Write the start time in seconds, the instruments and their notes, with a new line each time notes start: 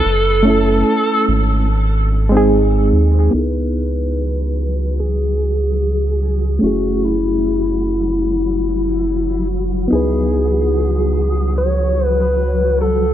Already playing: electric slide guitar A4
0.05 analog synth bass F#1
0.43 reed electric piano A3 C#4
0.47 reed electric piano E4 A4
1.28 analog synth bass G#1
2.29 reed electric piano G#3 C4
2.34 reed electric piano D#4 G#4
2.93 analog synth bass D#2
3.31 analog synth bass C#2, synth texture F#3 F#4, reed electric piano B3 D#4
3.35 reed electric piano E4 G#4, electric slide guitar B4
5.00 electric slide guitar G#4
6.59 analog synth bass F#1, reed electric piano A3 C#4
6.64 reed electric piano E4 G#4, electric slide guitar F#4
7.05 electric slide guitar E4
9.88 reed electric piano B3 D#4
9.92 analog synth bass C#2, reed electric piano E4 B4, electric slide guitar G#4
11.58 electric slide guitar C#5
12.07 electric slide guitar B4
12.21 electric slide guitar B4
12.82 electric slide guitar A4